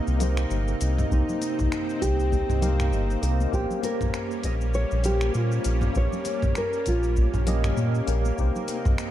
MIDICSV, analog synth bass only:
0, 0, Header, 1, 2, 480
1, 0, Start_track
1, 0, Tempo, 606061
1, 878, Time_signature, 4, 2, 24, 8
1, 7214, End_track
2, 0, Start_track
2, 0, Title_t, "Analog synth bass"
2, 0, Program_c, 0, 38
2, 61, Note_on_c, 0, 36, 96
2, 364, Note_off_c, 0, 36, 0
2, 401, Note_on_c, 0, 31, 79
2, 593, Note_off_c, 0, 31, 0
2, 646, Note_on_c, 0, 36, 87
2, 835, Note_off_c, 0, 36, 0
2, 882, Note_on_c, 0, 36, 107
2, 986, Note_off_c, 0, 36, 0
2, 1260, Note_on_c, 0, 36, 93
2, 1337, Note_off_c, 0, 36, 0
2, 1602, Note_on_c, 0, 36, 105
2, 1928, Note_off_c, 0, 36, 0
2, 1973, Note_on_c, 0, 36, 97
2, 2314, Note_on_c, 0, 31, 87
2, 2326, Note_off_c, 0, 36, 0
2, 2510, Note_off_c, 0, 31, 0
2, 2556, Note_on_c, 0, 36, 88
2, 2750, Note_off_c, 0, 36, 0
2, 2797, Note_on_c, 0, 34, 109
2, 2904, Note_off_c, 0, 34, 0
2, 3175, Note_on_c, 0, 34, 97
2, 3255, Note_off_c, 0, 34, 0
2, 3518, Note_on_c, 0, 34, 101
2, 3845, Note_off_c, 0, 34, 0
2, 3899, Note_on_c, 0, 34, 98
2, 4203, Note_off_c, 0, 34, 0
2, 4238, Note_on_c, 0, 46, 84
2, 4432, Note_off_c, 0, 46, 0
2, 4479, Note_on_c, 0, 34, 97
2, 4672, Note_off_c, 0, 34, 0
2, 4719, Note_on_c, 0, 34, 102
2, 4825, Note_off_c, 0, 34, 0
2, 5096, Note_on_c, 0, 34, 94
2, 5175, Note_off_c, 0, 34, 0
2, 5440, Note_on_c, 0, 34, 102
2, 5766, Note_off_c, 0, 34, 0
2, 5813, Note_on_c, 0, 34, 96
2, 6120, Note_off_c, 0, 34, 0
2, 6154, Note_on_c, 0, 46, 83
2, 6349, Note_off_c, 0, 46, 0
2, 6396, Note_on_c, 0, 34, 92
2, 6590, Note_off_c, 0, 34, 0
2, 6641, Note_on_c, 0, 36, 99
2, 6746, Note_off_c, 0, 36, 0
2, 7015, Note_on_c, 0, 36, 99
2, 7095, Note_off_c, 0, 36, 0
2, 7214, End_track
0, 0, End_of_file